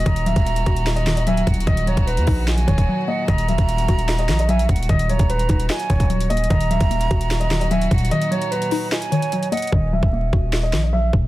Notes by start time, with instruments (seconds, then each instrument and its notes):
Already playing: string section A#2 D#3 F#3 F#4
0.06 808-style bass D#1, synth pluck D#3, grand piano D#5, flute A#5, kick, closed hi-hat
0.16 closed hi-hat
0.26 synth pluck F#3, grand piano E5, closed hi-hat
0.36 808-style bass D#1, kick, closed hi-hat
0.46 synth pluck A#3, closed hi-hat
0.56 closed hi-hat
0.66 808-style bass D#1, synth pluck F#4, kick, closed hi-hat
0.76 closed hi-hat
0.86 synth pluck D#5, snare, clap, closed hi-hat
0.96 grand piano D#5, closed hi-hat
1.07 synth pluck D#3, snare, clap, closed hi-hat
1.17 grand piano D#5, closed hi-hat
1.27 synth pluck F#3, grand piano E5, flute G#5, closed hi-hat
1.37 closed hi-hat
1.47 808-style bass D#1, synth pluck A#2, flute F#5, kick, closed hi-hat
1.54 closed hi-hat
1.60 closed hi-hat
1.67 808-style bass D#1, synth pluck D#3, grand piano D#5, kick, closed hi-hat
1.77 closed hi-hat
1.87 synth pluck F#3, grand piano C#5, flute A#5, closed hi-hat
1.97 808-style bass D#1, kick, closed hi-hat
2.07 grand piano B4, closed hi-hat
2.17 808-style bass D#2, closed hi-hat
2.27 808-style bass A#1, synth pluck D#4, kick, open hi-hat
2.48 synth pluck D#5, flute G#5, snare, clap, closed hi-hat
2.58 closed hi-hat
2.67 808-style bass D#1, synth pluck D#3, grand piano C#5, kick, closed hi-hat
2.78 kick, closed hi-hat
2.89 synth pluck F#3
3.08 synth pluck A#3, grand piano D#5, flute F#5
3.28 808-style bass D#1, synth pluck D#3, grand piano D#5, flute A#5, kick, closed hi-hat
3.38 closed hi-hat
3.48 synth pluck F#3, grand piano E5, closed hi-hat
3.58 808-style bass D#1, kick, closed hi-hat
3.68 synth pluck A#3, closed hi-hat
3.78 closed hi-hat
3.89 808-style bass D#1, synth pluck F#4, kick, closed hi-hat
3.99 closed hi-hat
4.08 synth pluck D#5, snare, clap, closed hi-hat
4.19 grand piano D#5, closed hi-hat
4.29 808-style bass A#1, synth pluck D#3, snare, clap, closed hi-hat
4.39 grand piano D#5, closed hi-hat
4.48 synth pluck F#3, grand piano E5, flute G#5, closed hi-hat
4.59 closed hi-hat
4.69 808-style bass D#1, synth pluck A#2, flute F#5, kick, closed hi-hat
4.76 closed hi-hat
4.82 closed hi-hat
4.89 808-style bass D#1, synth pluck D#3, grand piano D#5, kick, closed hi-hat
4.99 closed hi-hat
5.09 synth pluck F#3, grand piano C#5, flute A#5, closed hi-hat
5.19 808-style bass D#1, kick, closed hi-hat
5.30 grand piano B4, closed hi-hat
5.39 closed hi-hat
5.49 808-style bass D#1, synth pluck D#4, kick, closed hi-hat, open hi-hat
5.60 closed hi-hat
5.70 synth pluck D#5, flute G#5, snare, clap, closed hi-hat
5.80 closed hi-hat
5.90 808-style bass D#1, synth pluck D#3, grand piano C#5, kick, closed hi-hat
6.00 kick, closed hi-hat
6.10 synth pluck F#3, closed hi-hat
6.21 closed hi-hat
6.30 synth pluck A#3, grand piano D#5, closed hi-hat
6.37 closed hi-hat
6.44 closed hi-hat
6.50 808-style bass D#1, string section A#2 D#3 F#3 F#4, synth pluck D#3, grand piano D#5, flute A#5, kick, closed hi-hat
6.60 closed hi-hat
6.70 synth pluck F#3, grand piano E5, closed hi-hat
6.80 808-style bass D#1, kick, closed hi-hat
6.91 synth pluck A#3, closed hi-hat
7.01 closed hi-hat
7.11 808-style bass D#1, synth pluck F#4, kick, closed hi-hat
7.21 closed hi-hat
7.31 synth pluck D#5, snare, clap, closed hi-hat
7.40 grand piano D#5, closed hi-hat
7.51 synth pluck D#3, snare, clap, closed hi-hat
7.61 grand piano D#5, closed hi-hat
7.71 synth pluck F#3, grand piano E5, flute G#5, closed hi-hat
7.82 closed hi-hat
7.91 808-style bass D#1, synth pluck A#2, flute F#5, kick, closed hi-hat
7.98 closed hi-hat
8.05 closed hi-hat
8.11 synth pluck D#3, grand piano D#5, closed hi-hat
8.21 closed hi-hat
8.31 synth pluck F#3, grand piano C#5, flute A#5, closed hi-hat
8.41 closed hi-hat
8.51 grand piano B4, closed hi-hat
8.62 closed hi-hat
8.71 synth pluck D#4, open hi-hat
8.92 synth pluck D#5, flute G#5, snare, clap, closed hi-hat
9.02 closed hi-hat
9.12 synth pluck D#3, grand piano C#5, closed hi-hat
9.22 closed hi-hat
9.32 synth pluck F#3, closed hi-hat
9.43 closed hi-hat
9.52 synth pluck A#3, grand piano D#5, flute F#5, closed hi-hat
9.57 closed hi-hat
9.62 closed hi-hat
9.67 closed hi-hat
9.72 808-style bass D#1, synth pluck D#3, grand piano D#5, kick
9.93 synth pluck F#3, grand piano E5
10.03 808-style bass D#1, kick
10.13 synth pluck A#3
10.33 808-style bass D#1, synth pluck F#4, kick
10.53 synth pluck D#5, snare, clap
10.63 grand piano D#5
10.73 808-style bass A#1, synth pluck D#3, snare, clap
10.84 grand piano D#5
10.93 synth pluck F#3, grand piano E5
11.13 808-style bass D#1, synth pluck A#2, kick